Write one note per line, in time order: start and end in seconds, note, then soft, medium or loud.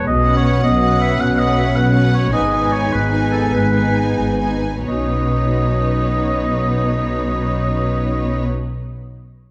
0.06 0.56 B1 medium
0.06 0.55 B2 medium
0.06 2.29 F#3 soft
0.06 2.29 C#4 soft
0.06 0.34 D#5 medium
0.25 0.80 C#4 soft
0.25 0.79 B4 soft
0.25 0.80 F#5 soft
0.37 0.44 C#5 medium
0.44 0.62 C#5 medium
0.63 1.12 B1 soft
0.63 1.12 B2 soft
0.63 0.99 D#5 medium
0.80 1.36 C#4 soft
0.80 1.36 B4 soft
0.80 1.36 F#5 soft
1.01 1.22 E5 medium
1.19 1.69 B1 soft
1.19 1.68 B2 soft
1.19 1.40 F#5 medium
1.37 1.91 C#4 soft
1.37 1.92 B4 soft
1.37 1.56 D#5 medium
1.37 1.92 F#5 soft
1.58 1.77 E5 medium
1.75 2.26 B1 soft
1.75 2.25 B2 medium
1.75 2.13 F#5 medium
1.92 2.31 C#4 soft
1.92 2.32 B4 soft
1.92 2.31 F#5 soft
2.14 2.32 C#5 medium
2.31 2.84 G#1 soft
2.31 2.83 G#2 medium
2.31 4.61 G#3 soft
2.31 4.61 B3 soft
2.31 2.50 D#4 soft
2.31 2.50 B4 soft
2.31 2.73 D#5 medium
2.31 2.51 G#5 soft
2.51 3.10 D#4 soft
2.51 3.09 B4 soft
2.51 3.10 G#5 soft
2.72 2.94 C#5 medium
2.91 3.45 G#1 soft
2.91 3.45 G#2 soft
2.91 3.31 B4 medium
3.10 3.73 D#4 soft
3.10 3.72 B4 soft
3.10 3.73 G#5 soft
3.32 3.52 A4 soft
3.53 4.10 G#1 soft
3.53 4.10 G#2 soft
3.53 3.95 B4 soft
3.74 4.39 D#4 soft
3.74 4.40 B4 soft
3.74 4.39 G#5 soft
4.18 4.80 G#1 soft
4.18 4.80 G#2 soft
4.40 4.87 D#4 soft
4.40 4.87 B4 soft
4.40 4.87 G#5 soft
4.88 8.47 B1 soft
4.88 8.47 B2 soft
4.88 8.46 F#3 soft
4.88 8.46 C#4 soft
4.88 8.47 D#4 soft
4.88 8.47 B4 soft
4.88 8.47 C#5 soft
4.88 8.47 D#5 soft